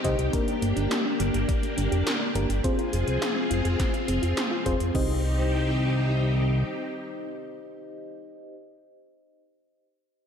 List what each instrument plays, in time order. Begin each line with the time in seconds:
Already playing: string machine C4 D#4 G4
0.04 analog synth bass C2, synth arpeggio sound D#4, fm electric piano D#4 G4 C5 D#5, kick, closed hi-hat
0.18 analog synth bass C2, synth arpeggio sound G4, closed hi-hat
0.33 fm electric piano A#3 D4 G4 A#4, string machine A#3 D4, synth arpeggio sound A#4, kick, closed hi-hat
0.47 synth arpeggio sound D5, closed hi-hat
0.62 analog synth bass G1, synth arpeggio sound A#3, closed hi-hat
0.76 analog synth bass G1, synth arpeggio sound D4, closed hi-hat
0.91 synth arpeggio sound A#3, snare, closed hi-hat
1.05 synth arpeggio sound D4
1.19 analog synth bass G1, synth arpeggio sound G4, closed hi-hat
1.34 analog synth bass G1, synth arpeggio sound A#4, closed hi-hat
1.48 synth arpeggio sound D5, kick, closed hi-hat
1.63 synth arpeggio sound A#3, closed hi-hat
1.77 analog synth bass G1, synth arpeggio sound D4, closed hi-hat
1.91 analog synth bass F1, synth arpeggio sound G4, closed hi-hat
2.06 synth arpeggio sound A#4, snare, closed hi-hat
2.21 synth arpeggio sound D5
2.35 analog synth bass G1, synth arpeggio sound A#3, fm electric piano A#3 D4 G4 A#4, closed hi-hat
2.49 analog synth bass G1, synth arpeggio sound D4, closed hi-hat
2.64 synth arpeggio sound C4, fm electric piano C4 F4 G#4 C5, string machine C4 F4 G#4, kick, closed hi-hat
2.78 synth arpeggio sound F4, closed hi-hat
2.93 analog synth bass F1, synth arpeggio sound G#4, closed hi-hat
3.07 analog synth bass C2, synth arpeggio sound C5, closed hi-hat
3.22 synth arpeggio sound F5, snare, closed hi-hat
3.36 synth arpeggio sound C4
3.50 analog synth bass F1, synth arpeggio sound F4, closed hi-hat
3.65 analog synth bass F1, synth arpeggio sound G#4, closed hi-hat
3.79 synth arpeggio sound C5, kick, snare, closed hi-hat
3.94 synth arpeggio sound F5, closed hi-hat
4.08 analog synth bass F1, synth arpeggio sound C4, closed hi-hat
4.22 analog synth bass F1, synth arpeggio sound F4, closed hi-hat
4.37 synth arpeggio sound C4, snare, closed hi-hat
4.51 synth arpeggio sound F4
4.66 analog synth bass F1, fm electric piano C4 F4 G#4 C5, synth arpeggio sound G#4, kick, closed hi-hat
4.80 analog synth bass F1, synth arpeggio sound C5, closed hi-hat
4.94 analog synth bass C2, synth arpeggio sound C4, string machine C4 D#4 G4, fm electric piano D#4 G4 C5 D#5, kick, crash